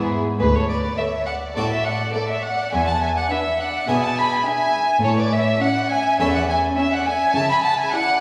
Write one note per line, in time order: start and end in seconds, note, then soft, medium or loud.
0.00 0.36 G#2 soft
0.00 0.39 G#2 soft
0.00 0.18 B3 soft
0.00 0.35 B3 soft
0.00 0.18 E4 soft
0.00 0.36 E4 soft
0.00 0.18 G#4 soft
0.00 0.36 G#4 soft
0.40 0.86 D2 soft
0.40 0.87 D2 soft
0.40 0.46 G#4 medium
0.40 0.54 B4 soft
0.40 0.57 B4 medium
0.55 0.69 A4 soft
0.55 0.69 C#5 soft
0.55 0.68 C#5 soft
0.69 0.98 B4 soft
0.69 0.77 D5 medium
0.69 0.98 D5 soft
0.97 1.42 A3 soft
0.97 1.26 C#5 soft
0.97 1.05 E5 soft
0.97 1.27 E5 soft
1.26 1.56 D5 soft
1.26 1.34 F#5 soft
1.26 1.35 F#5 soft
1.55 2.02 A2 soft
1.55 2.40 D4 soft
1.55 2.41 F#4 soft
1.55 1.70 A4 medium
1.55 2.41 A4 soft
1.55 1.70 D5 medium
1.55 1.62 D5 soft
1.70 1.85 C#5 soft
1.70 1.86 E5 medium
1.70 1.85 E5 soft
1.84 2.14 D5 medium
1.84 2.13 F#5 medium
1.84 2.14 F#5 soft
2.14 2.57 A3 soft
2.14 2.29 A4 soft
2.14 2.28 D5 medium
2.14 2.29 D5 soft
2.28 2.43 C#5 soft
2.28 2.44 E5 soft
2.42 2.72 D5 soft
2.42 2.72 F#5 medium
2.42 2.72 F#5 soft
2.73 3.18 E2 soft
2.73 3.19 E2 soft
2.73 2.87 E5 medium
2.73 2.87 G#5 soft
2.73 2.89 G#5 medium
2.87 3.02 F#5 soft
2.87 3.01 A5 soft
2.87 3.01 A5 medium
3.01 3.07 E5 medium
3.01 3.18 G#5 medium
3.01 3.16 G#5 soft
3.16 3.30 D5 soft
3.16 3.30 F#5 soft
3.16 3.33 F#5 medium
3.30 3.74 D4 soft
3.30 3.38 B4 soft
3.30 3.59 E5 soft
3.30 3.61 E5 medium
3.59 3.88 D5 soft
3.59 3.88 F#5 soft
3.59 3.89 F#5 medium
3.88 4.34 B2 medium
3.88 4.33 B2 soft
3.88 4.72 D4 soft
3.88 4.72 E4 soft
3.88 4.72 G#4 soft
3.88 4.02 E5 medium
3.88 4.05 G#5 medium
3.88 4.03 G#5 medium
4.03 4.17 F#5 medium
4.03 4.19 A5 medium
4.03 4.18 A5 medium
4.17 4.45 G#5 medium
4.17 4.25 B5 soft
4.17 4.48 B5 medium
4.46 4.89 D4 soft
4.46 5.04 E5 medium
4.46 5.03 G#5 soft
4.46 5.06 G#5 medium
5.03 5.50 A2 medium
5.03 5.50 A2 soft
5.03 5.17 A4 medium
5.03 5.21 C#5 medium
5.03 5.18 C#5 soft
5.17 5.32 B4 soft
5.17 5.33 D5 soft
5.17 5.34 D5 medium
5.33 5.62 C#5 medium
5.33 5.63 E5 medium
5.33 5.62 E5 soft
5.61 6.05 C#4 soft
5.61 5.91 D5 medium
5.61 5.92 F#5 medium
5.61 5.90 F#5 medium
5.90 6.19 E5 medium
5.90 6.19 G#5 medium
5.90 6.22 G#5 medium
6.19 6.65 E2 soft
6.19 7.03 C#4 soft
6.19 7.03 E4 soft
6.19 7.03 A4 soft
6.19 6.34 C#5 medium
6.19 6.33 E5 medium
6.19 6.34 E5 medium
6.34 6.49 D5 soft
6.34 6.48 F#5 medium
6.34 6.41 F#5 medium
6.48 6.58 E5 medium
6.48 6.56 G#5 soft
6.48 6.77 G#5 medium
6.77 7.20 C#4 soft
6.77 6.84 C#5 soft
6.77 6.95 E5 medium
6.77 6.92 E5 soft
6.92 7.06 D5 medium
6.92 7.06 F#5 medium
6.92 7.08 F#5 medium
7.06 7.35 E5 soft
7.06 7.34 G#5 medium
7.35 7.80 C#3 soft
7.35 7.81 C#3 medium
7.35 7.50 E5 medium
7.35 7.49 A5 medium
7.50 7.65 G#5 medium
7.50 7.55 B5 medium
7.50 7.63 B5 medium
7.64 7.79 F#5 medium
7.64 7.78 A5 medium
7.79 7.93 E5 medium
7.79 7.91 G#5 medium
7.79 7.93 G#5 soft
7.91 8.20 E4 medium
7.91 8.20 D5 medium
7.91 8.20 F#5 medium